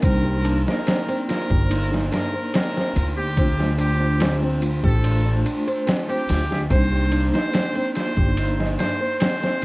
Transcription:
0.02 C2 A#3 C4 D4 D#4 A#4, kick, ride
0.07 C5
0.25 G3
0.45 D4, ride
0.66 A#3 D#4 A#4 D5, snare
0.71 C5
0.86 C4, snare, ride, tambourine
1.08 C4, ride
1.28 F4 A#4, snare, ride
1.50 G1 G4, kick
1.70 D#4, ride
1.92 D#4, snare
2.12 D4 A#4, snare, ride
2.33 C5
2.53 C4 A#4, snare, ride, tambourine
2.76 C4, snare
2.95 D2 F4, ride
3.17 G4
3.37 A3 C4 D4 F4 C5, kick, ride
3.59 G3, snare
3.78 D4 G4, ride
4.00 A3 D4 F4
4.04 C5
4.20 C4, snare, ride, tambourine
4.42 C4
4.62 F4, ride
4.83 A1 G4 A4, kick
5.04 D4, ride
5.25 D4
5.45 D4, ride
5.67 C5, ride
5.87 C4, snare, ride, tambourine
6.09 C4 G4, ride
6.29 D2 F4, snare, open hi-hat
6.51 G4, snare
6.70 C2 A#3 C4 D4 D#4 C5, kick, ride
6.92 G3
7.12 D4, ride
7.32 A#3 D#4 C5 D5, snare
7.37 C5
7.54 C4, snare, ride, tambourine
7.75 C4, ride
7.95 F4 C5, snare, ride
8.17 G1 G4, kick
8.37 D#4, ride
8.59 D#4, snare
8.79 D4 C5, snare, ride
9.01 C5
9.19 C4 C5, snare, ride, tambourine
9.43 C4, snare

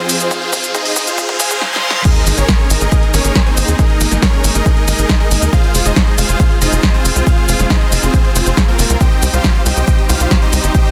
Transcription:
Already playing: F2 F3 C4 G#4 C5, riser
0.00 C4 F4 G#4 C5
0.09 open hi-hat, shaker
0.20 closed hi-hat, shaker
0.31 F4 G#4 C5 F5, kick, closed hi-hat, shaker
0.42 closed hi-hat
0.53 kick, open hi-hat, shaker
0.64 closed hi-hat, shaker
0.75 D#4 G#4 C5 D#5, kick, closed hi-hat, shaker
0.85 open hi-hat
0.96 kick, open hi-hat, shaker
1.07 F4 G#4 C5 F5, closed hi-hat, shaker
1.18 kick, closed hi-hat, reverse cymbal, shaker
1.29 kick, closed hi-hat
1.40 G#4 C5 F5 G#5, kick, open hi-hat, shaker
1.51 kick, closed hi-hat, shaker
1.61 snare
1.72 C5 F5 G#5 C6, snare
1.91 snare
2.05 G#3 A#3 D#4 G#4 A#4 D#5, kick, closed hi-hat, crash, sub drop, shaker
2.16 closed hi-hat
2.27 G#1, open hi-hat, shaker
2.38 G#1 C#4 G#4 A#4 C#5, closed hi-hat, shaker
2.49 kick, snare, closed hi-hat, shaker
2.59 closed hi-hat
2.70 G#1 D#4 G#4 A#4 D#5, open hi-hat, shaker
2.81 G#1, closed hi-hat, shaker
2.92 kick, closed hi-hat, shaker
3.03 closed hi-hat
3.14 G#1 C#4 G#4 A#4 C#5, open hi-hat, shaker
3.25 G#1, closed hi-hat, shaker
3.35 kick, snare, closed hi-hat, shaker
3.46 C4 D#4 G#4 C5, closed hi-hat
3.57 G#1, open hi-hat, shaker
3.68 D#2, closed hi-hat, shaker
3.79 D#4 G#4 A#4 D#5, kick, closed hi-hat, shaker
3.90 closed hi-hat
4.01 G#1, open hi-hat, shaker
4.12 G#1, snare, closed hi-hat, shaker
4.22 C#4 G#4 A#4 C#5, kick, snare, closed hi-hat, shaker
4.33 closed hi-hat
4.44 G#1, open hi-hat, shaker
4.55 G#1 D#4 G#4 A#4 D#5, closed hi-hat, shaker
4.66 kick, closed hi-hat, shaker
4.77 closed hi-hat
4.88 G#1 D#4 G#4 A#4 D#5, open hi-hat, shaker
4.99 G#1, closed hi-hat, shaker
5.09 kick, snare, closed hi-hat, shaker
5.20 D#4 G#4 A#4 D#5, closed hi-hat
5.31 G#1, open hi-hat, shaker
5.42 D#2, closed hi-hat, shaker
5.53 C4 F4 G#4 C5 F5, kick, closed hi-hat, shaker
5.64 closed hi-hat
5.75 F1, open hi-hat, shaker
5.85 F1 D#4 G#4 C5 D#5, closed hi-hat, shaker
5.96 kick, snare, closed hi-hat, shaker
6.07 closed hi-hat
6.18 F1 F4 G#4 C5 F5, open hi-hat, shaker
6.29 F1, closed hi-hat, shaker
6.40 kick, closed hi-hat, shaker
6.51 closed hi-hat
6.61 F1 D#4 G#4 C5 D#5, open hi-hat, shaker
6.72 F1, closed hi-hat, shaker
6.83 kick, snare, closed hi-hat, shaker
6.94 C4 F4 G#4 C5, closed hi-hat
7.05 F1, open hi-hat, shaker
7.16 C2, closed hi-hat, shaker
7.27 F4 G#4 C5 F5, kick, closed hi-hat, shaker
7.38 closed hi-hat
7.49 F1, open hi-hat, shaker
7.59 F1, snare, closed hi-hat, shaker
7.70 D#4 G#4 C5 D#5, kick, snare, closed hi-hat, shaker
7.81 closed hi-hat
7.92 F1, open hi-hat, shaker
8.03 F1 C4 F4 G#4 C5, closed hi-hat, shaker
8.14 kick, closed hi-hat, shaker
8.25 closed hi-hat
8.36 F1 C4 F4 G#4 C5, open hi-hat, shaker
8.46 F1, closed hi-hat, shaker
8.57 kick, snare, closed hi-hat, shaker
8.68 A#3 C4 F4 A#4, closed hi-hat
8.79 F1, open hi-hat, shaker
8.90 C2, shaker
9.01 G3 D#4 G4 C5 D#5 G5, kick, closed hi-hat, shaker
9.12 closed hi-hat
9.22 C2, open hi-hat, shaker
9.33 C2 F4 G4 C5 F5, closed hi-hat, shaker
9.44 kick, snare, closed hi-hat, shaker
9.55 closed hi-hat
9.66 C2 G4 C5 D#5 G5, open hi-hat, shaker
9.77 C2, closed hi-hat, shaker
9.88 kick, closed hi-hat, shaker
9.99 closed hi-hat
10.09 C2 F4 G4 C5 F5, open hi-hat, shaker
10.20 C2, closed hi-hat, shaker
10.31 kick, snare, closed hi-hat, shaker
10.42 D#4 G4 C5 D#5, closed hi-hat
10.53 C2, open hi-hat, shaker
10.64 G1, closed hi-hat, shaker
10.74 G4 C5 D#5 G5, kick, closed hi-hat, shaker
10.86 closed hi-hat

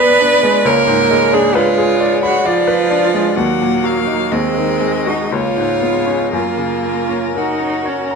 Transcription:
Already playing: B1 F#2 G#3 B3 D4 G#4 B4 D5 B5
0.00 B4
0.20 D4
0.43 G#3
0.65 C#2 A#3 A#4 C#5
0.87 G#2
1.10 G#3
1.33 D4 G#4
1.54 G#3 F4 B4 C#5
1.78 G#4
2.00 D5
2.23 F#4 B5
2.45 F3 F4 D5
2.67 B4
2.91 D4
3.14 G#3
3.36 D#2 F#3 A#3 F#5
3.61 A#2
3.84 F#3 F5
4.07 D#4
4.32 D#2 G#3 C4 D#5
4.56 D#3
4.81 G#3
5.07 D#4 F#4
5.32 C#2 A#3 F4 C#5
5.57 G#2
5.81 G#3 B3
6.06 C#4
6.33 F#2 A#3 F4 A#4
6.58 C#3
6.84 A#3
7.09 C#4
7.35 D#4 F#4 A#4
7.60 C#4
7.85 C#4 C#5
8.11 A#5

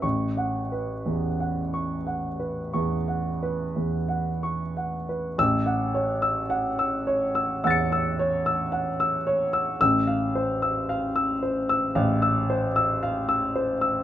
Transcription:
0.02 A1 C#6
0.37 F#5
0.72 B4
1.06 E2
1.40 F#5
1.74 C#6
2.07 F#5
2.40 B4
2.73 E2 C#6
3.08 F#5
3.43 B4
3.76 E2
4.09 F#5
4.43 C#6
4.77 F#5
5.09 B4
5.38 A1 E6
5.66 F#5
5.94 C#5
6.22 E6
6.50 F#5
6.79 E6
7.07 C#5
7.35 E6
7.64 E2 F#5 E6 A6
7.71 C#7
7.92 E6
8.19 C#5
8.46 E6
8.72 F#5
9.00 E6
9.27 C#5
9.53 E6
9.81 A1 E6
10.07 F5
10.35 C5
10.62 E6
10.89 F5
11.16 E6
11.43 C5
11.69 E6
11.95 A1 F5
12.22 E6
12.50 C5
12.76 E6
13.03 F5
13.29 E6
13.56 C5
13.81 E6

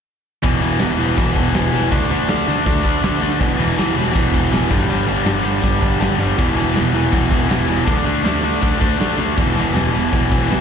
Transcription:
0.43 E1 E2 B2 E3, kick, crash
0.60 E1 E2 B2 E3, crash
0.79 E1 E2 B2 E3, snare, crash
0.98 E1 E2 B2 E3, crash
1.17 E1 E2 B2 E3, kick, crash
1.35 E1 E2 B2 E3, kick, crash
1.53 E1 E2 B2 E3, snare, crash
1.72 E1 E2 B2 E3, crash
1.91 D2 D3 A3 D4, kick, crash
2.10 D2 D3 A3 D4, crash
2.28 D2 D3 A3 D4, snare, crash
2.47 D2 D3 A3 D4, crash
2.65 D2 D3 A3 D4, kick, crash
2.83 D2 D3 A3 D4, kick, crash
3.02 D2 D3 A3 D4, snare, crash
3.20 D2 D3 A3 D4, crash
3.39 E1 E2 B2 E3, kick, crash
3.56 E1 E2 B2 E3, crash
3.76 E1 E2 B2 E3, snare, crash
3.95 E1 E2 B2 E3, crash
4.12 E1 E2 B2 E3, kick, crash
4.32 E1 E2 B2 E3, kick, crash
4.50 E1 E2 B2 E3, snare, crash
4.70 G1 G2 D3 G3, kick, crash
4.88 G1 G2 D3 G3, crash
5.06 G1 G2 D3 G3, crash
5.24 G1 G2 D3 G3, snare, crash
5.44 G1 G2 D3 G3, crash
5.61 G1 G2 D3 G3, kick, crash
5.81 G1 G2 D3 G3, kick, crash
6.00 G1 G2 D3 G3, snare, crash
6.18 G1 G2 D3 G3, snare
6.37 E1 E2 B2 E3, kick, crash
6.55 E1 E2 B2 E3, crash
6.74 E1 E2 B2 E3, snare, crash
6.93 E1 E2 B2 E3, crash
7.11 E1 E2 B2 E3, kick, crash
7.30 E1 E2 B2 E3, kick, crash
7.48 E1 E2 B2 E3, snare, crash
7.67 E1 E2 B2 E3, crash
7.85 D2 D3 A3 D4, kick, crash
8.05 D2 D3 A3 D4, crash
8.23 D2 D3 A3 D4, snare, crash
8.42 D2 D3 A3 D4, crash
8.60 D2 D3 A3 D4, kick, crash
8.78 D2 D3 A3 D4, kick, crash
8.97 D2 D3 A3 D4, snare, crash
9.16 D2 D3 A3 D4, crash
9.35 E1 E2 B2 E3, kick, crash
9.55 E1 E2 B2 E3, crash
9.73 E1 E2 B2 E3, crash
9.77 E2, snare
9.91 E1 E2 B2 E3, crash
10.10 E1 E2 B2 E3, kick, crash
10.28 E1 E2 B2 E3, kick
10.33 crash
10.46 E1 E2 B2 E3
10.52 snare, crash

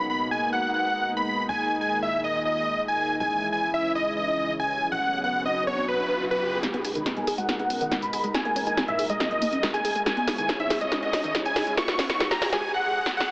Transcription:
Already playing: G#1 B2 G#3 A#3 D#4
0.10 B5
0.31 G#5
0.53 F#5
0.74 F#5
1.17 B5
1.49 D#2 A#2 D#3 G#5
1.81 G#5
2.02 E5
2.24 D#5
2.45 D#5
2.88 G#5
3.20 C#2 C#3 E3 G#3 E4 G#5, riser
3.52 G#5
3.74 E5
3.95 D#5
4.17 D#5
4.60 G#5
4.92 B1 F#3 B3 F#4 F#5
5.24 F#5
5.45 D#5
5.67 C#5
5.88 B4
6.31 B4
6.63 B2 G#3 D#4 A#4, snare, closed hi-hat, tambourine, riser
6.74 B3, closed hi-hat
6.85 G#4, open hi-hat, tambourine
6.95 D#3 B5, closed hi-hat, tambourine
7.06 G#3, snare, closed hi-hat, tambourine
7.17 G#2 G#5, closed hi-hat
7.27 G#4, open hi-hat, tambourine
7.38 G#3 F#5, closed hi-hat, tambourine
7.49 G#3, snare, closed hi-hat, tambourine
7.59 B3 F#5, closed hi-hat
7.70 C#4, open hi-hat, tambourine
7.81 D#3, closed hi-hat, tambourine
7.92 G#3, snare, closed hi-hat, tambourine
8.02 G#2 B5, closed hi-hat, tambourine
8.13 G#4, open hi-hat, tambourine
8.24 G#3, closed hi-hat, tambourine
8.34 A#2 G#3 A#3 G#5, snare, closed hi-hat, tambourine
8.45 A#3, closed hi-hat
8.56 C#4, open hi-hat, tambourine
8.67 D#4 G#5, closed hi-hat, tambourine
8.77 G#3, snare, closed hi-hat, tambourine
8.88 G#2 E5, closed hi-hat
8.99 G#4, open hi-hat, tambourine
9.10 G#3 D#5, closed hi-hat, tambourine
9.20 A#3, snare, closed hi-hat, tambourine
9.31 G#3 D#5, closed hi-hat
9.42 A#3, open hi-hat, tambourine
9.52 C#4, closed hi-hat, tambourine
9.63 G#3, snare, closed hi-hat, tambourine
9.74 G#4 G#5, closed hi-hat, tambourine
9.85 G#4, open hi-hat, tambourine
9.95 G#3, closed hi-hat, tambourine
10.06 C#3 G#3 E4 C#5 G#5, snare, closed hi-hat, tambourine
10.17 B3, closed hi-hat
10.28 G#4, snare, open hi-hat, tambourine
10.38 D#3 G#5, closed hi-hat, tambourine
10.49 G#3, snare, closed hi-hat, tambourine
10.60 G#2 E5, closed hi-hat
10.70 G#4, snare, open hi-hat, tambourine
10.81 G#3 D#5, closed hi-hat, tambourine
10.92 G#3, snare, closed hi-hat, tambourine
11.03 B3 D#5, closed hi-hat
11.13 C#4, snare, open hi-hat, tambourine
11.24 D#3, closed hi-hat, tambourine
11.35 G#3, snare, closed hi-hat, tambourine
11.45 G#2 G#5, closed hi-hat, tambourine
11.56 G#4, snare, open hi-hat, tambourine
11.67 G#3, closed hi-hat, tambourine
11.77 A#3 B3 F#4 C#6, snare, closed hi-hat, tambourine
11.88 B3, snare, closed hi-hat
11.99 C#4, snare, open hi-hat, tambourine
12.10 D#4 C#6, snare, closed hi-hat, tambourine
12.20 G#3, snare, closed hi-hat, tambourine
12.31 G#2 A#5, snare, closed hi-hat, tambourine
12.42 G#4, snare, open hi-hat, tambourine
12.53 G#3 G#5, snare, closed hi-hat, tambourine
12.63 swell
12.74 F#5
13.06 snare
13.17 F#5, snare

